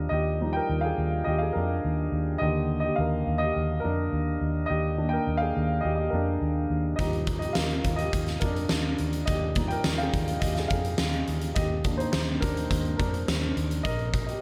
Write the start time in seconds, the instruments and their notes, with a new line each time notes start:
Already playing: upright piano F3 G3 D4 D#4 G4 A#4 D#5 F5
0.09 fingered electric bass D#2, upright piano G4 D#5
0.40 upright piano F3 G3 D#4
0.53 upright piano A#4 G5
0.69 fingered electric bass D#2
0.81 upright piano G#4 F5
0.98 fingered electric bass D#2
1.24 fingered electric bass D#2, upright piano G4 D#5
1.38 upright piano G#4 F5
1.53 fingered electric bass F2, upright piano A#4
1.57 upright piano D4
1.85 fingered electric bass D#2
2.12 fingered electric bass D#2
2.38 fingered electric bass D#2, upright piano D3 D#3 A#3 G4 D#5
2.80 upright piano D#5
2.84 upright piano G4
2.96 fingered electric bass D#2, upright piano F5
3.00 upright piano A#4
3.27 fingered electric bass D#2
3.38 upright piano D#5
3.42 upright piano G4
3.56 fingered electric bass D#2
3.80 upright piano A#4
3.84 fingered electric bass F2, upright piano D4
4.13 fingered electric bass D#2
4.41 fingered electric bass D#2
4.66 upright piano G4 D#5
4.70 fingered electric bass D#2
4.98 upright piano D#3 A#3 D4
5.09 upright piano G5
5.13 upright piano A#4
5.27 fingered electric bass D#2
5.37 upright piano F5
5.42 upright piano G#4
5.57 fingered electric bass D#2
5.81 fingered electric bass D#2, upright piano D#5
5.85 upright piano G4
5.95 upright piano D#5
6.00 upright piano G4
6.10 fingered electric bass F2, upright piano D4 A#4
6.41 fingered electric bass D#2
6.70 fingered electric bass D#2
6.96 fingered electric bass D#2, upright piano F3 G3 G4 D#5, kick, closed hi-hat
7.00 upright piano D#4
7.13 closed hi-hat
7.27 kick, closed hi-hat
7.39 upright piano D#5, closed hi-hat
7.43 upright piano G4
7.53 fingered electric bass D#2, upright piano F5, snare
7.58 upright piano A#4
7.70 closed hi-hat
7.84 fingered electric bass D#2, kick, closed hi-hat
7.96 upright piano D#5, closed hi-hat
8.00 upright piano G4
8.13 fingered electric bass D#2, kick, closed hi-hat
8.26 snare, closed hi-hat
8.40 fingered electric bass F2, upright piano A#4, kick, closed hi-hat
8.44 upright piano D4
8.56 closed hi-hat
8.69 fingered electric bass D#2, snare
8.98 fingered electric bass D#2, closed hi-hat
9.13 closed hi-hat
9.26 fingered electric bass D#2, upright piano D#5, kick, closed hi-hat
9.30 upright piano G4
9.55 upright piano F3 G3 D#4, kick, closed hi-hat
9.68 upright piano A#4 G5, closed hi-hat
9.84 fingered electric bass D#2, snare
9.98 upright piano G#4 F5, closed hi-hat
10.14 fingered electric bass D#2, kick, closed hi-hat
10.28 closed hi-hat
10.40 fingered electric bass D#2, upright piano G4 D#5, kick, closed hi-hat
10.55 upright piano F5, snare, closed hi-hat
10.59 upright piano G#4
10.68 fingered electric bass F2, upright piano G#4 F5, kick, closed hi-hat
10.85 closed hi-hat
10.98 fingered electric bass D#2, snare
11.12 closed hi-hat
11.27 fingered electric bass D#2, closed hi-hat
11.41 closed hi-hat
11.55 fingered electric bass D#2, upright piano G4 D#5, kick, closed hi-hat
11.84 upright piano D#3 A#3 D4, kick, closed hi-hat
11.98 upright piano D#4 C5, closed hi-hat
12.12 fingered electric bass D#2, upright piano D#4 C5, snare
12.40 fingered electric bass D#2, upright piano D4 A#4, kick, closed hi-hat
12.57 closed hi-hat
12.71 fingered electric bass D#2, kick, closed hi-hat
12.85 closed hi-hat
12.97 fingered electric bass F2, upright piano D4 A#4, kick, closed hi-hat
13.14 closed hi-hat
13.28 fingered electric bass D#2, snare
13.57 fingered electric bass D#2, closed hi-hat
13.71 closed hi-hat
13.83 fingered electric bass A#1, upright piano A#4 D#5, kick, closed hi-hat
13.99 closed hi-hat
14.14 kick, closed hi-hat
14.26 upright piano G4 D#5, closed hi-hat